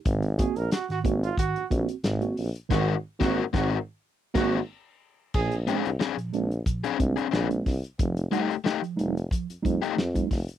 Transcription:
<<
  \new Staff \with { instrumentName = "Trombone" } { \time 4/4 \key bes \major \tempo 4 = 91 r8 aes'16 bes'16 ges'16 ges'16 r16 f'16 ges'8 r4. | ges'8 r16 ges'8 ges'8 r8. ges'8 r4 | aes'8 r2. r8 | r1 | }
  \new Staff \with { instrumentName = "Overdriven electric guitar" } { \time 4/4 \key bes \major r1 | <c' ges' bes'>8 r16 <c' ges' bes'>8 <c' ges' bes'>8 r8. <c' ges' bes'>8 r4 | r8 <c' d' aes'>16 r16 <c' d' aes'>16 r4 <c' d' aes'>16 r16 <c' d' aes'>16 <c' d' aes'>16 r8. | r8 <a ees' g'>16 r16 <a ees' g'>16 r4. <a ees' g'>16 r4 | }
  \new Staff \with { instrumentName = "Tine electric piano" } { \time 4/4 \key bes \major <aes, ees>16 <c' ges'>16 <bes c' ges'>16 r16 <c' ges'>16 <aes, ees>16 <bes c' ges'>16 r16 <aes, ees>16 r16 <bes c' ges'>16 <c' ges'>16 <aes, ees>16 <bes c' ges'>16 <c' ges'>16 r16 | <aes, ees>8 r16 <bes c' ges'>8 <aes, ees>8 r8. <bes c' ges'>8 r4 | <bes, f>16 <c' d'>16 <aes c' d'>16 r16 <c' d'>16 <bes, f>16 <aes c' d'>16 r16 <bes, f>16 r16 <aes c' d'>16 <c' d'>16 <bes, f>16 <aes c' d'>16 <c' d'>16 r16 | f16 <a ees'>16 <g a ees'>16 r16 <a ees'>16 f16 <g a ees'>16 r16 f16 r16 <g a ees'>16 <a ees'>16 f16 <g a ees'>16 <a ees'>16 r16 | }
  \new Staff \with { instrumentName = "Tuba" } { \clef bass \time 4/4 \key bes \major aes,,8. bes,,16 r8 aes,,8 r16 bes,,16 bes,,16 r16 aes,,8 bes,,16 r16 | aes,,8 r16 aes,,8 aes,,8 r8. aes,,8 r4 | bes,,8. c,16 r8 bes,,8 r16 c,16 c,16 r16 bes,,8 c,16 r16 | f,,8 r16 f,,16 r8 f,,8 r16 f,16 f,16 r16 f,8 f,,16 r16 | }
  \new DrumStaff \with { instrumentName = "Drums" } \drummode { \time 4/4 <hh bd>16 hh16 <hh bd>16 hh16 <hh sn>16 <hh sn>16 <hh bd>16 hh16 <hh bd>16 hh16 <hh bd>16 hh16 <hh sn>16 hh16 hho16 hh16 | <cymc bd sn>8. <bd sn>16 r16 <bd sn>8. r8 <cymc bd sn>8 r4 | <cymc bd>16 hh16 hh16 hh16 sn16 hh16 hh16 hh16 <hh bd>16 hh16 <hh bd>16 hh16 sn16 hh16 <hho bd sn>16 hh16 | <hh bd>16 hh16 hh16 hh16 sn16 hh16 hh16 hh16 <hh bd>16 hh16 <hh bd>16 hh16 sn16 <hh bd>16 <hho bd sn>16 hh16 | }
>>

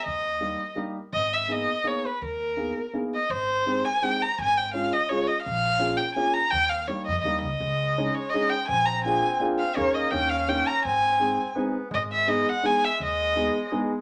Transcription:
<<
  \new Staff \with { instrumentName = "Violin" } { \time 3/4 \key gis \minor \tempo 4 = 167 dis''2 r4 | dis''8 e''8 dis''4 cis''8 b'8 | ais'2 r8 dis''8 | \key aes \major c''4. aes''8 g''8 bes''8 |
aes''8 g''8 f''8 ees''8 des''8 ees''8 | f''4. g''8 aes''8 bes''8 | g''8 f''8 des''8 ees''8 ees''8 ees''8~ | ees''4. des''8 ees''8 g''8 |
aes''8 bes''8 aes''4 r8 f''8 | des''8 ees''8 g''8 f''8 g''8 bes''8 | aes''2 r4 | \key gis \minor dis''8 e''8 dis''8 fis''8 gis''8 e''8 |
dis''2 r4 | }
  \new Staff \with { instrumentName = "Upright piano" } { \time 3/4 \key gis \minor r4 <g ais dis' g'>8 r8 <g ais dis' g'>8 r8 | r4 <ais b dis' gis'>8 r8 <ais b dis' gis'>8 r8 | r4 <ais b dis' gis'>8 r8 <ais b dis' gis'>8 r8 | \key aes \major r4 <aes c' ees' g'>8 r8 <aes c' ees' g'>8 r8 |
r4 <aes des' f' aes'>8 r8 <aes des' f' aes'>8 r8 | r4 <bes des' f' aes'>8 r8 <bes des' f' aes'>8 r8 | r4 <g bes ees' g'>8 r8 <g bes ees' g'>8 r8 | r4 <aes des' ees' aes'>8 r8 <aes des' ees' aes'>8 r8 |
r4 <bes d' f' aes'>8 r8 <bes d' f' aes'>8 r8 | <bes des' ees' aes'>4 <bes des' ees' g'>8 r8 <bes des' ees' g'>8 r8 | r4 <aes c' ees' aes'>8 r8 <aes c' ees' aes'>8 r8 | \key gis \minor r4 <gis b dis' gis'>8 r8 <gis b dis' gis'>8 r8 |
r4 <gis b dis' gis'>8 r8 <gis b dis' gis'>8 r8 | }
  \new Staff \with { instrumentName = "Bassoon" } { \time 3/4 \key gis \minor r2. | r2. | r2. | \key aes \major r2. |
r2. | r2. | r2. | aes2. |
c'2. | bes4 des'2 | c'2 ces'4 | \key gis \minor gis2.~ |
gis2. | }
  \new Staff \with { instrumentName = "Upright bass" } { \clef bass \time 3/4 \key gis \minor dis,2 r4 | gis,,2 r4 | dis,2 r4 | \key aes \major aes,,2 r4 |
aes,,2 r4 | bes,,2 r4 | ees,4. f,8 ees,8 des,8 | des,2 r4 |
bes,,2 r4 | ees,4 ees,2 | aes,,2 r4 | \key gis \minor gis,,2 r4 |
dis,2 r4 | }
>>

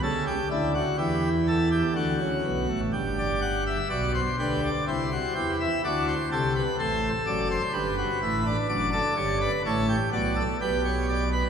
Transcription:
<<
  \new Staff \with { instrumentName = "Pipe organ" } { \time 3/4 \key g \major \tempo 4 = 62 << { r2. | r16 d''16 fis''16 e''16 d''16 c''16 b'16 d''16 c''8. e''16 | d''16 c''16 a'16 b'16 c''8 d''16 c''16 b'4 | d''4 cis''8 d''8 b'16 cis''16 d''16 b'16 | } \\ { a'16 g'16 e'16 fis'16 g'8 a'16 g'16 fis'4 | g'4 fis'8 g'8 e'16 fis'16 g'16 e'16 | fis'8 g'8 a'4 g'16 fis'16 e'16 d'16 | d'16 a'16 cis''16 b'16 a'16 g'16 fis'16 a'16 g'8. r16 | } >> }
  \new Staff \with { instrumentName = "Pipe organ" } { \clef bass \time 3/4 \key g \major <cis, cis>8 <d, d>8 <e, e>4 <d, d>16 <cis, cis>16 <b,, b,>16 <a,, a,>16 | <g,, g,>4 <b,, b,>8 <d, d>8 <c, c>8 <e, e>8 | <d, d>8 <c, c>8 <a,, a,>8 <fis,, fis,>8 <g,, g,>8 <a,, a,>8 | <fis,, fis,>8 <g,, g,>8 <a,, a,>8 <b,, b,>8 <b,, b,>4 | }
>>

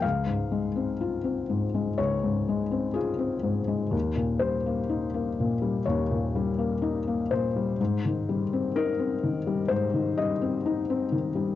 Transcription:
<<
  \new Staff \with { instrumentName = "Felt piano" } { \time 4/4 \key des \lydian \tempo 4 = 62 f''2 des''4 aes'4 | r8 c''4. des''4. c''8~ | c''4 bes'4 c''8 ees''4 r8 | }
  \new Staff \with { instrumentName = "Felt piano" } { \clef bass \time 4/4 \key des \lydian des,16 aes,16 aes16 c'16 f'16 c'16 aes,16 aes16 des,16 aes,16 aes16 c'16 f'16 c'16 aes,16 aes16 | ees,16 bes,16 g16 bes16 ees'16 bes16 bes,16 g16 ees,16 bes,16 g16 bes16 ees'16 bes16 bes,16 g16 | aes,16 ees16 g16 c'16 ees'16 c'16 ees16 g16 aes,16 ees16 g16 c'16 ees'16 c'16 ees16 g16 | }
>>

